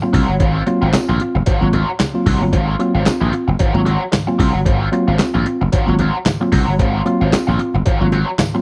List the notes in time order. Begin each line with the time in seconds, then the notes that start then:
0.02 F#3 A#3 C4 F4, muted overdriven electric guitar stroke
0.13 C2 F#3 C4 F4, kick, open hi-hat, high conga
0.28 G1, muted overdriven electric guitar stroke
0.40 G#1 G#2 D#3 F#3 C4 F4, kick, closed hi-hat, muted conga
0.67 F#3 A#3 C4 F4, muted overdriven electric guitar stroke, closed hi-hat, muted conga
0.82 G#1 F#3 C4 F4
0.93 C4 F4, muted slap bass stroke, muted overdriven electric guitar stroke, snare, clap, closed hi-hat, tambourine, high conga
1.09 A#1 G#2 D#3 F#3 C4 F4
1.20 C4 F4, muted overdriven electric guitar stroke, closed hi-hat
1.35 F#1, muted overdriven electric guitar stroke, low conga
1.46 G#2 D#3 F#3 C4 F4, muted slap bass stroke, kick, closed hi-hat
1.61 G#1 F#3 A#3 C4 F4, muted overdriven electric guitar stroke
1.73 F#3 C4 F4, closed hi-hat, muted conga, low conga
1.88 muted overdriven electric guitar stroke
1.99 muted overdriven electric guitar stroke, snare, clap, closed hi-hat, tambourine, high conga
2.14 F#3 A#3 C4 F4
2.26 C2 G#2 D#3 F#3 C4 F#4, kick, open hi-hat, high conga
2.41 G1 F#3 A#3 C4 F4, muted overdriven electric guitar stroke
2.53 G#1 G#2 D#3 F#3 C4 F4, kick, closed hi-hat, muted conga
2.79 F#3 A#3 C4 F4, muted overdriven electric guitar stroke, closed hi-hat
2.94 G#1 F#3 C4 F4
3.06 C4 F4, muted overdriven electric guitar stroke, muted slap bass stroke, snare, clap, closed hi-hat, tambourine, high conga
3.21 A#1 G#2 D#3 F#3 C4 F4
3.33 C4 F4, muted overdriven electric guitar stroke, closed hi-hat
3.48 F#1, muted overdriven electric guitar stroke, low conga
3.59 G#2 D#3 F#3 C4 F4, kick, closed hi-hat
3.74 G#1 F#3 A#3 C4 F4, muted overdriven electric guitar stroke
3.86 F#3 C4 F4 F#4, closed hi-hat, muted conga
4.01 muted overdriven electric guitar stroke
4.12 G#2 D#3, muted overdriven electric guitar stroke, snare, clap, closed hi-hat, tambourine, high conga
4.27 F#3 A#3 C4 F4, muted overdriven electric guitar stroke
4.39 C2 F#3 C4 F4, kick, open hi-hat, high conga
4.54 G1, muted overdriven electric guitar stroke
4.66 G#1 G#2 D#3 F#3 C4 F4, kick, closed hi-hat, muted conga
4.92 F#3 A#3 C4 F4, muted overdriven electric guitar stroke, closed hi-hat
5.07 G#1 F#3 C4 F4
5.19 C4 F4, muted overdriven electric guitar stroke, muted slap bass stroke, snare, clap, closed hi-hat, tambourine, high conga
5.34 A#1 G#2 D#3 F#3 C4 F4
5.45 C4 F4, muted overdriven electric guitar stroke, closed hi-hat
5.61 F#1, muted overdriven electric guitar stroke, low conga
5.72 G#2 D#3 F#3 C4 F4, kick, closed hi-hat
5.86 G#1 F#3 A#3 C4 F4, muted overdriven electric guitar stroke
5.99 F#3 C4 F4, closed hi-hat, muted conga, low conga
6.15 muted overdriven electric guitar stroke
6.25 G#2 D#3, muted overdriven electric guitar stroke, snare, clap, closed hi-hat, tambourine, high conga
6.40 F#3 A#3 C4 F4, muted overdriven electric guitar stroke
6.52 C2 F#3 C4 F4 F#4, kick, open hi-hat, high conga
6.68 G1, muted overdriven electric guitar stroke
6.79 G#1 G#2 D#3 F#3 C4 F4, kick, closed hi-hat, muted conga
7.05 F#3 A#3 C4 F4, muted overdriven electric guitar stroke, closed hi-hat, muted conga
7.21 G#1 F#3 C4 F4
7.32 C4 F4, muted overdriven electric guitar stroke, muted slap bass stroke, snare, clap, closed hi-hat, tambourine, high conga
7.47 A#1 G#2 D#3 F#3 C4 F4
7.59 C4 F4, muted overdriven electric guitar stroke, closed hi-hat
7.74 F#1, muted overdriven electric guitar stroke, low conga
7.86 G#2 D#3 F#3 C4 F4, kick, closed hi-hat
8.01 G#1 F#3 A#3 C4 F4, muted overdriven electric guitar stroke
8.12 F#3 C4 F4 F#4, closed hi-hat, muted conga
8.28 muted overdriven electric guitar stroke
8.39 G#2 D#3, muted overdriven electric guitar stroke, snare, clap, closed hi-hat, tambourine, high conga
8.54 F#3 A#3 C4 F4, muted overdriven electric guitar stroke